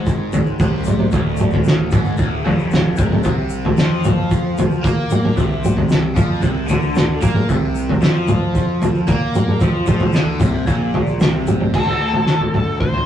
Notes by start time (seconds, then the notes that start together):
Already playing: G#1 G#2
0.07 kick, shaker
0.33 floor tom, shaker
0.46 shaker
0.59 C2 C3, kick, floor tom, shaker
0.84 mid tom, shaker
0.99 mid tom
1.11 D1 D2, kick, floor tom, shaker
1.37 mid tom, shaker
1.51 floor tom, shaker
1.64 snare, shaker
1.91 G#1 G#2, kick, floor tom, mid tom, shaker
2.05 shaker
2.17 D1 D2, kick, shaker
2.44 F1 F2, floor tom
2.59 shaker
2.71 snare, floor tom, shaker
2.96 C2 C3, kick, mid tom, shaker
3.12 mid tom
3.23 C2 C3, kick, floor tom, shaker
3.49 shaker
3.65 floor tom
3.77 F2 F3, snare, shaker
4.04 floor tom, mid tom, shaker
4.31 kick, shaker
4.58 floor tom, shaker
4.71 shaker
4.83 A#2 A#3, kick, floor tom, shaker
5.10 mid tom, shaker
5.24 mid tom
5.36 C2 C3, kick, floor tom, shaker
5.64 mid tom, shaker
5.77 floor tom
5.89 snare, shaker
6.15 F2 F3, kick, floor tom, mid tom, shaker
6.42 C2 C3, kick, shaker
6.67 D2 D3, floor tom, shaker
6.81 shaker
6.95 snare, floor tom, shaker
7.22 A#2 A#3, kick, mid tom, shaker
7.35 mid tom
7.49 C2 C3, kick, floor tom, shaker
7.75 shaker
7.89 floor tom
8.01 F2 F3, snare, shaker
8.28 floor tom, mid tom, shaker
8.55 kick, shaker
8.82 floor tom, shaker
8.95 shaker
9.07 A#2 A#3, kick, floor tom, shaker
9.35 mid tom, shaker
9.48 mid tom
9.60 F2 F3, kick, floor tom, shaker
9.86 F2 F3, kick, mid tom, shaker
9.99 floor tom, shaker
10.13 D2 D3, snare, shaker
10.40 C2 C3, kick, floor tom, mid tom, shaker
10.67 A#1 A#2, kick, shaker
10.94 floor tom
11.07 shaker
11.20 C2 C3, snare, floor tom, shaker
11.47 mid tom, shaker
11.60 mid tom
11.74 D2 A4, kick, floor tom, crash
11.87 floor tom
12.00 D2
12.13 floor tom
12.27 snare
12.40 floor tom
12.53 D2, floor tom, mid tom
12.80 C5, kick, floor tom
12.94 floor tom